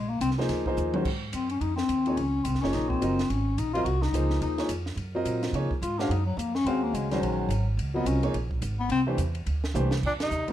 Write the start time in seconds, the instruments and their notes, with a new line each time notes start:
Already playing: upright bass A#1, bass clarinet G#3
0.09 bass clarinet A#3
0.20 upright bass C2, bass clarinet C4, hi-hat pedal, ride
0.31 snare
0.38 grand piano F3 A#3 D#4 G#4 C5, snare
0.49 upright bass D2, snare, ride
0.66 grand piano F3 A#3 D#4 G#4 C5, kick
0.77 upright bass D#2, hi-hat pedal
0.94 grand piano D#3 G#3 C#4 F#4 C5, mid tom
1.05 upright bass G#2, kick, crash
1.33 upright bass F#2, bass clarinet C4, hi-hat pedal, ride
1.49 bass clarinet C#4, ride
1.61 upright bass F2, bass clarinet D#4, ride
1.76 bass clarinet C4, snare
1.88 upright bass D#2, hi-hat pedal, ride
2.06 grand piano F3 A#3 D#4 G#4 C#5, ride
2.17 upright bass C#2, bass clarinet C#4, ride
2.44 upright bass C2, bass clarinet C4, hi-hat pedal, ride
2.54 upright bass G#1, snare
2.61 upright bass F#1, grand piano F3 A#3 D#4 G#4 C#5, bass clarinet C#4, snare
2.73 upright bass A#1, bass clarinet D#4, snare, ride
2.89 bass clarinet C4, kick
3.01 upright bass F#1, grand piano F#3 C4 F4 A#4 D#5, hi-hat pedal, ride
3.19 snare, ride
3.30 upright bass G#1, bass clarinet C#4, ride
3.58 upright bass A#1, bass clarinet D#4, hi-hat pedal, ride
3.73 grand piano F#3 C4 F4 A#4 D#5, bass clarinet F4, ride
3.84 upright bass C2, bass clarinet F#4, ride
4.02 bass clarinet D#4, snare
4.12 upright bass C#2, grand piano F3 A#3 D#4 G#4 C5, hi-hat pedal, ride
4.30 snare
4.40 upright bass D#2, bass clarinet D#4, ride
4.57 grand piano F3 A#3 D#4 G#4 C#5, snare, ride
4.68 upright bass F2, hi-hat pedal, ride
4.86 snare
4.96 upright bass F#2, ride
5.15 grand piano F#3 C4 F4 A#4 D#5
5.25 upright bass A#2, hi-hat pedal, ride
5.43 snare, ride
5.52 upright bass C#3, grand piano F3 A#3 D#4 G#4 C#5, ride
5.70 muted upright bass stroke, kick
5.82 upright bass G#2, bass clarinet F4, hi-hat pedal, ride
5.99 grand piano G#3 C#4 F#4 C5 F5, bass clarinet D4, snare
6.09 upright bass F#2, bass clarinet D#4, ride
6.26 bass clarinet F#3
6.37 upright bass F2, bass clarinet A#3, hi-hat pedal, ride
6.55 bass clarinet C#4, snare
6.65 upright bass D#2, grand piano G#3 C#4 F#4 C5 F5, bass clarinet C4, ride
6.83 bass clarinet A#3
6.93 upright bass C#2, bass clarinet G#3, hi-hat pedal, ride
7.11 grand piano D#3 G#3 C#4 F#4 C5, bass clarinet G3, snare, ride
7.22 upright bass A#1, bass clarinet F#3, ride
7.49 upright bass G#1, hi-hat pedal, ride
7.77 upright bass C#2, ride
7.94 grand piano F#3 C4 F4 A#4 D#5, bass clarinet B3
8.05 upright bass C2, bass clarinet C#4, hi-hat pedal, ride
8.22 grand piano F3 A#3 D#4 G#4 C#5, ride
8.34 upright bass A#1, ride
8.51 kick
8.62 upright bass G#1, hi-hat pedal, ride
8.80 bass clarinet B3
8.89 upright bass C2, bass clarinet C4, ride
9.07 grand piano E3 A3 D4 G4 C5
9.18 upright bass E2, hi-hat pedal, ride
9.35 ride
9.46 upright bass D2, ride
9.64 snare
9.74 upright bass C2, grand piano E3 A3 D4 G4 C5, hi-hat pedal, high tom
9.91 snare
10.02 upright bass F2, bass clarinet A#2, kick, crash
10.07 tenor saxophone D4
10.20 bass clarinet C3, tenor saxophone D#4, snare, ride
10.31 upright bass D#2, hi-hat pedal
10.47 grand piano D3 G3 C4 F4, muted upright bass stroke, ride